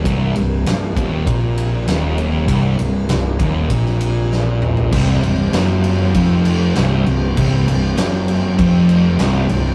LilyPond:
<<
  \new Staff \with { instrumentName = "Tonewheel organ" } { \clef bass \time 4/4 \key c \minor \tempo 4 = 98 <c g bes>1~ | <c g bes>1 | <c c' g'>1~ | <c c' g'>1 | }
  \new Staff \with { instrumentName = "Distorted electric guitar" } { \clef bass \time 4/4 \key c \minor c,8 c,8 c,8 ees,8 bes,4 ees,4 | c,8 c,8 c,8 ees,8 bes,2 | c,8 c,8 fis,4 f,4 c,8 c,8 | c,8 c,8 fis,4 f,4 c,8 c,8 | }
  \new Staff \with { instrumentName = "Distorted electric guitar" } { \clef bass \time 4/4 \key c \minor c,8 c,8 c,8 ees,8 bes,4 ees,4 | c,8 c,8 c,8 ees,8 bes,2 | c,8 c,8 fis,4 f,4 c,8 c,8 | c,8 c,8 fis,4 f,4 c,8 c,8 | }
  \new Staff \with { instrumentName = "Picked electric bass" } { \clef bass \time 4/4 \key c \minor c,,8 c,,8 c,,8 ees,,8 bes,,4 ees,,4 | c,,8 c,,8 c,,8 ees,,8 bes,,2 | c,,8 c,,8 fis,,4 f,,4 c,,8 c,,8 | c,,8 c,,8 fis,,4 f,,4 c,,8 c,,8 | }
  \new DrumStaff \with { instrumentName = "Drums" } \drummode { \time 4/4 <bd cymr>8 cymr8 <cymr sn>8 <bd cymr>8 <bd cymr>8 cymr8 <cymr sn>8 cymr8 | <bd cymr>8 cymr8 <cymr sn>8 <bd cymr>8 <bd cymr>16 sn16 cymr8 sn8 toml16 tomfh16 | <cymc bd>8 cymc8 <cymc sn>8 cymc8 <cymc bd>8 cymc8 <cymc sn>8 cymc8 | <cymc bd>8 cymc8 <cymc sn>8 cymc8 <cymc bd>8 cymc8 <cymc sn>8 cymc8 | }
>>